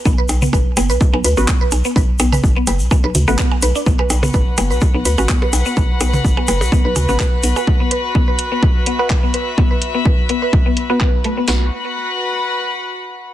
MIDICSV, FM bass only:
0, 0, Header, 1, 2, 480
1, 0, Start_track
1, 0, Tempo, 476190
1, 54, Time_signature, 4, 2, 24, 8
1, 13443, End_track
2, 0, Start_track
2, 0, Title_t, "FM bass"
2, 0, Program_c, 0, 39
2, 55, Note_on_c, 0, 35, 97
2, 161, Note_off_c, 0, 35, 0
2, 295, Note_on_c, 0, 35, 92
2, 494, Note_off_c, 0, 35, 0
2, 535, Note_on_c, 0, 33, 78
2, 641, Note_off_c, 0, 33, 0
2, 774, Note_on_c, 0, 30, 89
2, 903, Note_on_c, 0, 35, 96
2, 918, Note_off_c, 0, 30, 0
2, 994, Note_off_c, 0, 35, 0
2, 1143, Note_on_c, 0, 35, 102
2, 1234, Note_off_c, 0, 35, 0
2, 1254, Note_on_c, 0, 38, 99
2, 1360, Note_off_c, 0, 38, 0
2, 1383, Note_on_c, 0, 33, 99
2, 1474, Note_off_c, 0, 33, 0
2, 1734, Note_on_c, 0, 35, 89
2, 1840, Note_off_c, 0, 35, 0
2, 1975, Note_on_c, 0, 35, 102
2, 2081, Note_off_c, 0, 35, 0
2, 2215, Note_on_c, 0, 35, 92
2, 2414, Note_off_c, 0, 35, 0
2, 2455, Note_on_c, 0, 33, 83
2, 2561, Note_off_c, 0, 33, 0
2, 2694, Note_on_c, 0, 30, 89
2, 2824, Note_on_c, 0, 35, 98
2, 2839, Note_off_c, 0, 30, 0
2, 2915, Note_off_c, 0, 35, 0
2, 3063, Note_on_c, 0, 35, 100
2, 3154, Note_off_c, 0, 35, 0
2, 3175, Note_on_c, 0, 38, 101
2, 3280, Note_off_c, 0, 38, 0
2, 3304, Note_on_c, 0, 33, 96
2, 3395, Note_off_c, 0, 33, 0
2, 3655, Note_on_c, 0, 35, 89
2, 3760, Note_off_c, 0, 35, 0
2, 3895, Note_on_c, 0, 35, 99
2, 4000, Note_off_c, 0, 35, 0
2, 4134, Note_on_c, 0, 35, 93
2, 4334, Note_off_c, 0, 35, 0
2, 4375, Note_on_c, 0, 33, 78
2, 4481, Note_off_c, 0, 33, 0
2, 4616, Note_on_c, 0, 30, 87
2, 4744, Note_on_c, 0, 35, 94
2, 4759, Note_off_c, 0, 30, 0
2, 4835, Note_off_c, 0, 35, 0
2, 4984, Note_on_c, 0, 35, 103
2, 5075, Note_off_c, 0, 35, 0
2, 5094, Note_on_c, 0, 38, 95
2, 5200, Note_off_c, 0, 38, 0
2, 5224, Note_on_c, 0, 33, 100
2, 5315, Note_off_c, 0, 33, 0
2, 5574, Note_on_c, 0, 35, 88
2, 5680, Note_off_c, 0, 35, 0
2, 5814, Note_on_c, 0, 35, 102
2, 5920, Note_off_c, 0, 35, 0
2, 6054, Note_on_c, 0, 35, 90
2, 6254, Note_off_c, 0, 35, 0
2, 6295, Note_on_c, 0, 33, 80
2, 6401, Note_off_c, 0, 33, 0
2, 6535, Note_on_c, 0, 30, 90
2, 6663, Note_on_c, 0, 35, 97
2, 6678, Note_off_c, 0, 30, 0
2, 6754, Note_off_c, 0, 35, 0
2, 6902, Note_on_c, 0, 35, 100
2, 6994, Note_off_c, 0, 35, 0
2, 7015, Note_on_c, 0, 38, 96
2, 7120, Note_off_c, 0, 38, 0
2, 7144, Note_on_c, 0, 33, 94
2, 7235, Note_off_c, 0, 33, 0
2, 7494, Note_on_c, 0, 35, 84
2, 7600, Note_off_c, 0, 35, 0
2, 11574, Note_on_c, 0, 35, 96
2, 11798, Note_off_c, 0, 35, 0
2, 13443, End_track
0, 0, End_of_file